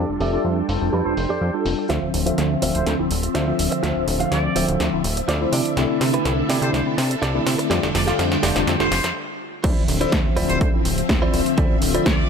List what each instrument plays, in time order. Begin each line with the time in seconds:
Already playing: tine electric piano G3 D4 F4 A4, string machine D4 A4 G5
0.09 analog synth bass F1
0.20 analog synth bass F1, clean electric guitar G4 A4 E5, trumpet section D5, open hi-hat
0.32 tine electric piano G3 D4 F4 A4, trumpet section D5
0.44 analog synth bass F2
0.68 analog synth bass F1, tine electric piano G3 D4 F4 A4, open hi-hat
0.82 analog synth bass F1
0.93 analog synth bass F2, clean electric guitar G4 A4 B4
1.05 analog synth bass F1, tine electric piano G3 D4 F4 A4, trumpet section C5
1.17 analog synth bass F1, open hi-hat
1.29 analog synth bass F2, clean electric guitar G4 A4 D5
1.41 analog synth bass F2
1.53 tine electric piano G3 D4 F4 A4
1.65 analog synth bass F1, open hi-hat
1.78 muted clean electric guitar stroke
1.89 analog synth bass D2, tine electric piano D3 F3 C4 E5, string machine F3 C4 E5, clean electric guitar F4 C5 E5, snare, closed hi-hat
2.02 analog synth bass D1
2.14 analog synth bass D1, open hi-hat
2.26 tine electric piano D3 F3 C4 E5, clean electric guitar F4 C5 E5, closed hi-hat
2.38 analog synth bass D2, snare, closed hi-hat
2.62 analog synth bass D1, tine electric piano D3 F3 C4 E5, clean electric guitar F4 C5 E5, open hi-hat
2.75 analog synth bass D1, trumpet section C5, closed hi-hat
2.86 analog synth bass D2, trumpet section C5, snare, closed hi-hat
2.99 analog synth bass D1, tine electric piano D3 F3 C4 E4
3.11 analog synth bass D1, open hi-hat
3.23 muted clean electric guitar stroke, closed hi-hat
3.35 analog synth bass D2, clean electric guitar F4 C5 E5, snare, closed hi-hat
3.47 tine electric piano D3 F3 C4 E5
3.59 analog synth bass D1, open hi-hat
3.72 muted clean electric guitar stroke, closed hi-hat
3.83 analog synth bass D2, tine electric piano D3 F3 C4 E5, clean electric guitar F4 C5 E5, snare, closed hi-hat
3.96 analog synth bass D1
4.07 analog synth bass D1, open hi-hat
4.20 tine electric piano D3 F3 C4, clean electric guitar F4 C5 F5, closed hi-hat
4.32 analog synth bass D2, trumpet section D5, snare, closed hi-hat
4.56 analog synth bass D1, tine electric piano D3 F3 C4, clean electric guitar F4 C5 E5, open hi-hat
4.68 analog synth bass D1, closed hi-hat
4.80 analog synth bass D2, snare, closed hi-hat
4.92 analog synth bass D1, tine electric piano D3 F3 C4 E4
5.04 analog synth bass D1, open hi-hat
5.17 muted clean electric guitar stroke, closed hi-hat
5.28 analog synth bass D2, clean electric guitar F4 C5 D5, snare, closed hi-hat
5.41 tine electric piano D3 A3 C4 E4
5.52 analog synth bass C3, string machine D4 A4, clean electric guitar E4 A4 D5, open hi-hat
5.65 closed hi-hat
5.77 analog synth bass C2, tine electric piano D3 A3 C4 E4, snare, closed hi-hat
5.89 analog synth bass C3
6.01 analog synth bass C3, snare, open hi-hat
6.13 tine electric piano D3 A3 C4 E4, clean electric guitar E4 A4 B4, closed hi-hat
6.25 analog synth bass C2, snare, closed hi-hat
6.49 analog synth bass C3, tine electric piano D3 A3 C4 E4, clean electric guitar E4 A4 D5, snare, open hi-hat
6.62 analog synth bass C3, trumpet section C5, closed hi-hat
6.73 analog synth bass C2, trumpet section C5, snare, closed hi-hat
6.86 analog synth bass C3, tine electric piano D3 A3 C4 E4
6.98 analog synth bass C3, snare, open hi-hat
7.10 muted clean electric guitar stroke, closed hi-hat
7.22 analog synth bass C2, clean electric guitar E4 A4 D5, snare, closed hi-hat
7.34 tine electric piano D3 A3 C4 E4
7.46 analog synth bass C3, snare, open hi-hat
7.59 muted clean electric guitar stroke, closed hi-hat
7.70 analog synth bass F2, tine electric piano D3 G3 A3 F4, string machine D4 G5, clean electric guitar G4 A4 D5, snare, closed hi-hat
7.83 analog synth bass F1, snare
7.95 analog synth bass F1, trumpet section D5, snare, open hi-hat
8.07 tine electric piano D3 G3 A3 F4, clean electric guitar G4 A4 F5, trumpet section D5, snare, closed hi-hat
8.19 analog synth bass F2, snare, closed hi-hat
8.32 snare
8.43 analog synth bass F1, tine electric piano D3 G3 A3 F4, clean electric guitar G4 A4 D5, snare, open hi-hat
8.55 analog synth bass F1, snare, closed hi-hat
8.67 analog synth bass F2, snare, closed hi-hat
8.79 analog synth bass F1, tine electric piano D3 G3 A3 F4, trumpet section C5, snare
8.91 analog synth bass F1, snare, open hi-hat
9.04 analog synth bass F2, muted clean electric guitar stroke, snare, closed hi-hat
9.64 analog synth bass D2, tine electric piano D3 F3 C4 E5, string machine F3 C4 E5, clean electric guitar E4 F4 C5 D5, kick, closed hi-hat, crash
9.77 analog synth bass D1
9.88 analog synth bass D1, open hi-hat
10.01 tine electric piano D3 F3 C4 E5, clean electric guitar E4 F4 C5 D5, closed hi-hat
10.12 analog synth bass D2, kick, snare, closed hi-hat
10.36 analog synth bass D1, tine electric piano D3 F3 C4 E5, clean electric guitar E4 F4 C5 D5, open hi-hat
10.49 analog synth bass D1, trumpet section C5, closed hi-hat
10.61 analog synth bass D2, trumpet section C5, kick, closed hi-hat
10.73 analog synth bass D1, tine electric piano D3 F3 C4 E4
10.85 analog synth bass D1, open hi-hat
10.98 closed hi-hat
11.09 analog synth bass D2, muted clean electric guitar stroke, kick, snare, closed hi-hat
11.21 tine electric piano D3 F3 C4 E5, clean electric guitar E4 F4 C5 D5
11.33 analog synth bass D1, open hi-hat
11.46 closed hi-hat
11.57 analog synth bass D2, tine electric piano D3 F3 C4 E5, clean electric guitar E4 F4 C5 D5, kick, closed hi-hat
11.71 analog synth bass D1
11.82 analog synth bass D1, open hi-hat
11.94 tine electric piano D3 F3 C4 E5, clean electric guitar E4 F4 C5 D5, closed hi-hat
12.06 analog synth bass D2, trumpet section D5, kick, snare, closed hi-hat